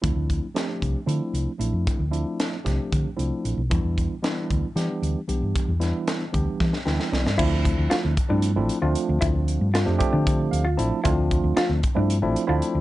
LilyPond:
<<
  \new Staff \with { instrumentName = "Clean electric guitar" } { \time 7/8 \key d \dorian \tempo 4 = 114 r2. r8 | r2. r8 | r2. r8 | r2. r8 |
e'8 r8 f'8 r16 d'8 r8 f'8 r16 | e'8 r8 f'8 r16 d'8 r8 f'8 r16 | e'8 r8 f'8 r16 d'8 r8 f'8 r16 | }
  \new Staff \with { instrumentName = "Tine electric piano" } { \time 7/8 \key d \dorian << { r2. r8 | r2. r8 | r2. r8 | r2 r8 g''8 d''8 |
r2. r8 | r2 r8 f''8 a''8 | r2. r8 | } \\ { <f a c' d' e'>8. r16 <f a c' d' g'>8. r16 <f a c' d' e'>8. r16 <f a c' d' e'>8~ | <f a c' d' e'>16 r16 <f a c' d' e'>8. r16 <f a c' d' g'>8. r16 <f a c' d' e'>8. r16 | <e g b d' e'>8. r16 <e g b d' e'>8. r16 <e g b d' g'>8. r16 <e g b d' g'>8~ | <e g b d' g'>16 r16 <e g b d' e'>8. r16 <e g b d' g'>8. r16 <e g b d' e'>8. r16 |
<f a c' d' e'>4. r16 <f a c' d' e'>8 <f a c' d' e'>8 <f a c' d' f'>8.~ | <f a c' d' f'>4 r16 <f a c' d' g'>16 <f a c' d' g'>4~ <f a c' d' g'>16 r16 <f a c' d' e'>8 | <f a c' d' f'>4. r16 <f a c' d' e'>8 <f a c' d' e'>8 <f a c' d' e'>8. | } >> }
  \new Staff \with { instrumentName = "Fingered electric bass" } { \clef bass \time 7/8 \key d \dorian d,16 d,8 r8. c,16 r16 d16 r16 c,16 r16 a,,16 f,16 | r16 d,8 r8. c,16 r16 d16 r16 c,16 r16 a,,16 b,,16 | e,16 e,8 r8. d,16 r16 e16 r16 d,16 r16 b,,16 g,16 | r16 e,8 r8. d,16 r16 e16 r16 d,16 r16 b,,16 g,16 |
d,8. d,16 r16 d,16 r16 g,8 a,,16 r16 d,16 r16 d,16 | d,8. g,8 f,16 r16 d8. d,8 a,,16 r16 | d,8. d,16 r16 d,16 r16 g,8 a,,16 r16 d,16 r16 d,16 | }
  \new DrumStaff \with { instrumentName = "Drums" } \drummode { \time 7/8 <hh bd>8 <hh bd>8 <hh sn>8 <hh bd>8 hh8 hh8 hh8 | <hh bd>8 hh8 <hh sn>8 <hh bd sn>8 <hh bd>8 hh8 hh8 | <hh bd>8 <hh bd>8 <hh sn>8 <hh bd>8 <hh sn>8 hh8 hh8 | <hh bd>8 <hh sn>8 <hh sn>8 <hh bd>8 <bd sn>16 sn16 sn16 sn16 sn16 sn16 |
<cymc bd>8 <hh bd>8 <hh sn>8 <hh bd>8 hh8 hh8 hh8 | <hh bd>8 hh8 <hh sn>8 <hh bd>8 <hh bd>8 hh8 hh8 | <hh bd>8 <hh bd>8 <hh sn>8 <hh bd>8 hh8 hh8 hh8 | }
>>